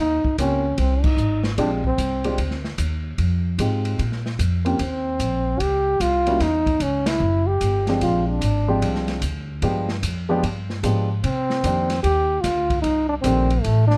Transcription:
0.00 upright bass D#2, trombone D#4
0.24 muted upright bass stroke, kick
0.38 upright bass C#2, grand piano A#3 C4 C#4 F4 G4, trombone C#4, kick, hi-hat pedal, ride
0.78 upright bass C2, trombone C4, kick, ride
1.04 trombone D#4, kick, crash
1.17 upright bass G#1, hi-hat pedal
1.44 snare
1.58 upright bass A#1, grand piano G#3 C4 D4 F4 G4, trombone D4, kick, ride
1.84 trombone C4, kick
1.98 upright bass C2, kick, hi-hat pedal, ride
2.24 grand piano G#3 C4 D4 F4 G4, ride
2.38 upright bass D2, kick, ride
2.51 snare
2.64 snare
2.78 upright bass D#2, kick, hi-hat pedal, ride
3.18 upright bass F2, kick, ride
3.58 upright bass G#2, grand piano G#3 C4 D#4 F4 G4, kick, hi-hat pedal, ride
3.85 ride
3.99 upright bass A#2, kick, ride
4.12 snare
4.26 snare
4.39 upright bass F2, kick, hi-hat pedal, ride
4.65 grand piano A#3 C4 C#4 F4 G4, ride
4.79 upright bass D#2, trombone C4, kick, ride
5.19 upright bass A#1, kick, hi-hat pedal, ride
5.59 upright bass C#2, trombone G4, kick, ride
6.00 upright bass C2, trombone F4, kick, hi-hat pedal, ride
6.27 grand piano G3 A#3 C#4 E4 F#4, ride
6.40 upright bass E2, trombone D#4, kick, snare, ride
6.66 kick, ride
6.80 upright bass C#2, trombone C#4, kick, hi-hat pedal, ride
7.06 trombone E4, snare, ride
7.20 upright bass F#1
7.47 trombone G4
7.61 upright bass G1, kick, hi-hat pedal, ride
7.87 grand piano F3 G#3 C4 D4 G4, snare, ride
8.01 upright bass A#1, trombone F4, kick, ride
8.29 trombone D4
8.41 upright bass G#1, kick, hi-hat pedal, ride
8.68 grand piano F3 G#3 C4 D4 G4
8.82 upright bass C2, kick, ride
8.95 snare
9.08 snare, ride
9.22 upright bass D2, kick, hi-hat pedal, ride
9.62 upright bass G2, grand piano F3 G#3 B3 D4 G4, kick, ride
9.89 snare
10.03 upright bass F2, kick, hi-hat pedal, ride
10.29 grand piano F3 G#3 B3 D4 G4
10.43 upright bass G2, kick, ride
10.70 snare
10.83 upright bass G#2, grand piano F3 G#3 B3 D4 G4, kick, hi-hat pedal, ride
11.23 upright bass C3, trombone C4, kick, ride
11.50 snare
11.63 upright bass F2, grand piano D#3 A#3 C4 D4 G4, kick, hi-hat pedal, ride
11.90 snare, ride
12.03 upright bass D#2, trombone G4, kick, ride
12.41 upright bass D2, trombone F4, kick, snare, hi-hat pedal, ride
12.70 kick, ride
12.82 upright bass C2, trombone D#4, kick, ride
13.09 trombone D4
13.22 upright bass A#1, grand piano D#3 A3 C4 D4 G4, trombone C4, kick, hi-hat pedal, ride
13.50 ride
13.61 upright bass A1, trombone A3, kick, ride
13.87 trombone D4, snare

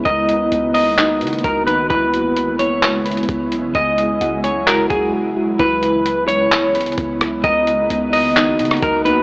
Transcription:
Already playing: ambient pad B3
0.05 808-style bass C#2, ambient pad D#3 A#3 F#4, clean electric guitar D#5, synth keys A#5, kick, closed hi-hat
0.29 closed hi-hat
0.52 808-style bass C#2, synth keys D#5, closed hi-hat
0.74 clean electric guitar D#5, synth keys A#5, open hi-hat
0.98 synth keys D#4, clap, closed hi-hat
1.21 808-style bass C#3, synth keys D#5, closed hi-hat
1.27 closed hi-hat
1.33 closed hi-hat
1.39 closed hi-hat
1.44 808-style bass C#2, clean electric guitar A#4, kick, closed hi-hat
1.67 synth keys D#4, clean electric guitar B4, closed hi-hat
1.90 808-style bass C#2, ambient pad C#3 G#3 B3 E4, synth keys E4, clean electric guitar B4, kick, closed hi-hat
2.14 closed hi-hat
2.37 synth keys B5, closed hi-hat
2.59 synth keys E4, clean electric guitar C#5, closed hi-hat
2.83 clap, closed hi-hat
3.05 synth keys B5, closed hi-hat
3.11 closed hi-hat
3.17 closed hi-hat
3.23 closed hi-hat
3.29 808-style bass C#2, kick, closed hi-hat
3.52 808-style bass B1, closed hi-hat
3.75 808-style bass C#2, ambient pad F#3 G#3 E4, clean electric guitar D#5, synth keys G#5, kick, closed hi-hat
3.98 closed hi-hat
4.21 808-style bass C#2, synth keys F#5, closed hi-hat
4.44 clean electric guitar C#5, synth keys G#5, closed hi-hat
4.67 synth keys F#4, clean electric guitar A#4, clap, closed hi-hat
4.90 808-style bass C#2, clean electric guitar G#4, synth keys F#5, kick, closed hi-hat
5.36 synth keys F#4
5.59 808-style bass C#2, ambient pad C#3 G#3 B3 E4, synth keys E4, clean electric guitar B4, kick, closed hi-hat
5.83 closed hi-hat
6.06 synth keys B5, closed hi-hat
6.28 synth keys E4, clean electric guitar C#5, closed hi-hat
6.52 clap, closed hi-hat
6.75 synth keys B5, closed hi-hat
6.81 closed hi-hat
6.86 closed hi-hat
6.92 closed hi-hat
6.98 808-style bass C#2, kick, closed hi-hat
7.21 cross-stick, closed hi-hat
7.44 808-style bass C#2, ambient pad D#3 A#3 F#4, clean electric guitar D#5, synth keys A#5, kick, closed hi-hat
7.67 closed hi-hat
7.90 808-style bass C#2, synth keys D#5, closed hi-hat
8.13 clean electric guitar D#5, synth keys A#5, open hi-hat
8.36 synth keys D#4, clap, closed hi-hat
8.59 808-style bass C#3, synth keys D#5, closed hi-hat
8.65 closed hi-hat
8.71 cross-stick, closed hi-hat
8.77 closed hi-hat
8.82 808-style bass C#2, clean electric guitar A#4, kick, closed hi-hat
9.05 synth keys D#4, clean electric guitar B4, closed hi-hat

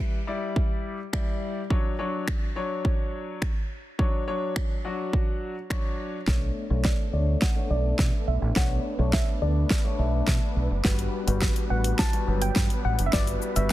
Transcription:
Already playing: grand piano G3 E4 B4
0.27 grand piano G3 E4 D5
0.56 kick
1.13 grand piano G3 E4 D5, finger snap, kick
1.70 grand piano F#3 D4 C#5, kick
1.99 grand piano F#3 D4 C#5
2.28 finger snap, kick
2.56 grand piano F#3 D4 C#5
2.85 kick
3.42 finger snap, kick
3.99 grand piano F#3 D4 C#5, kick
4.27 grand piano F#3 D4 C#5
4.56 finger snap, kick
4.85 grand piano F#3 D4 F#4
5.13 kick
5.70 grand piano F#3 D4 C#5, finger snap, kick
6.27 fingered electric bass B1, grand piano A3 D4 C#5, kick, snare
6.70 fingered electric bass B1, grand piano A3 D4 C#5
6.85 synth pluck D5, kick, snare
7.13 fingered electric bass D2, grand piano A3 D4 C#5, synth pluck D5
7.42 synth pluck F#5, kick, snare
7.56 grand piano A3 D4 C#5
7.70 fingered electric bass B1, grand piano A3 D4 D5, synth pluck D5
7.99 fingered electric bass B2, kick, snare
8.28 fingered electric bass B1, synth pluck E5
8.42 fingered electric bass A1
8.56 grand piano A3 D4 C#5, synth pluck F#5, kick, snare
8.99 fingered electric bass B1, grand piano A3 D4 C#5
9.13 synth pluck E5, kick, snare
9.42 fingered electric bass D2, grand piano A3 D4 D5, synth pluck D5
9.70 kick, snare
9.84 grand piano A3 D4 C#5
9.99 fingered electric bass B1, grand piano A3 D4 E5
10.27 fingered electric bass B2, kick, snare
10.56 fingered electric bass B1
10.71 fingered electric bass F#1
10.84 fingered electric bass G1, grand piano G3 F#4 B4, kick, snare
10.99 closed hi-hat
11.27 fingered electric bass G1, grand piano G3 F#4 B4, closed hi-hat
11.42 kick, snare
11.56 closed hi-hat
11.70 fingered electric bass A1, grand piano G3 F#4 B4, synth pluck F#5
11.84 closed hi-hat
11.99 synth pluck A5, kick, snare
12.13 grand piano G3 F#4 B4, closed hi-hat
12.27 fingered electric bass G1, grand piano F#3 G3 B4
12.42 synth pluck G5, closed hi-hat
12.56 fingered electric bass G2, kick, snare
12.70 closed hi-hat
12.85 fingered electric bass A1, synth pluck F#5
12.99 fingered electric bass F#1, closed hi-hat
13.06 synth pluck E5
13.13 fingered electric bass G1, grand piano G3 F#4 B4, synth pluck D5, kick, snare, shaker
13.27 closed hi-hat, shaker
13.42 shaker
13.56 fingered electric bass G1, grand piano G3 F#4 B4, synth pluck E5, closed hi-hat, shaker

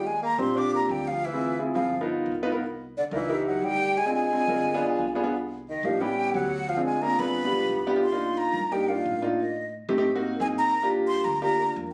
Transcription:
Already playing: upright bass D#2
0.05 tenor saxophone G#3, flute G#5
0.22 tenor saxophone A#3, flute A#5
0.38 upright bass A#1, grand piano C4 D4 F4 G4, tenor saxophone C4, flute C6
0.55 grand piano C4 D4 F4 G4, tenor saxophone D4, flute D6
0.74 tenor saxophone A#3, flute A#5
0.89 upright bass D2, tenor saxophone G3, flute G5
1.07 tenor saxophone F3, flute F5
1.25 tenor saxophone E3, flute E5
1.33 grand piano C4 E4 F4 G#4
1.59 grand piano C4 E4 F4 G#4
1.75 upright bass G1, tenor saxophone F3, grand piano C4 E4 F4 G#4, flute F5
2.01 grand piano B3 D#4 F4 A#4
2.26 upright bass C2
2.43 grand piano B3 D#4 F4 B4
2.52 grand piano B3 D#4 F4 A#4
2.97 tenor saxophone D3, flute D5
3.11 upright bass C#2, tenor saxophone E3, grand piano D4 D#4 F4 A#4, flute E5
3.29 grand piano D#4 E4 G4 A#4
3.46 tenor saxophone F#3, flute F#5
3.62 upright bass D2, tenor saxophone G3, flute G5
3.97 tenor saxophone G#3, flute G#5
4.06 grand piano C4 D4 F4 G#4
4.14 tenor saxophone G#3, flute G#5
4.33 grand piano C4 D4 F4 G#4
4.47 upright bass G1, grand piano C4 D4 F4 A#4
4.74 grand piano B3 D4 F4 G#4
4.81 upright bass B1, grand piano D5
4.99 upright bass C2, grand piano F5
5.15 grand piano B3 D4 F4 G#4 G#5
5.23 grand piano B3 D4 F4 G#4
5.69 tenor saxophone D#3, flute D#5
5.83 upright bass A1, tenor saxophone F3, grand piano A#3 D4 D#4 G4, flute F5
6.01 tenor saxophone G3, grand piano B3 C#4 E4 G4, flute G5
6.34 upright bass D2, tenor saxophone F#3, flute F#5
6.68 tenor saxophone F3, flute F5
6.77 grand piano C4 D4 F4 G#4
6.85 tenor saxophone G#3, flute G#5
7.02 tenor saxophone A#3, grand piano C4 D4 F4 G#4, flute A#5
7.19 upright bass G1, tenor saxophone B3, grand piano C4 D4 F4 G#4, flute B5
7.45 grand piano B3 D4 F4 G4
7.52 upright bass B1
7.69 upright bass C2
7.86 grand piano B3 D4 F4 G4
7.96 grand piano B3 D4 F4 G4
8.03 flute C6
8.12 grand piano A#3 D4 D#4 F4
8.38 flute A#5
8.53 upright bass G2
8.72 grand piano A#3 D4 D#4 G4, flute G5
8.89 grand piano A#3 D4 D#4 F4, flute F5
9.05 upright bass A2
9.22 grand piano A#3 D4 D#4 F4
9.40 flute D#5
9.89 upright bass G#2, grand piano A3 C4 D#4 G4
9.98 grand piano A3 C4 D#4 G4
10.15 grand piano A#3 C4 D#4 F#4
10.40 upright bass G2, grand piano A#3 C4 D#4 G#4, flute G#5
10.58 flute A#5
10.83 grand piano A#3 D4 F4 G4
11.07 flute C6
11.24 upright bass D2, flute A#5
11.42 grand piano A#3 D4 F4 G4, flute A#5
11.59 grand piano A#3 D4 F4 A#4
11.76 upright bass F2

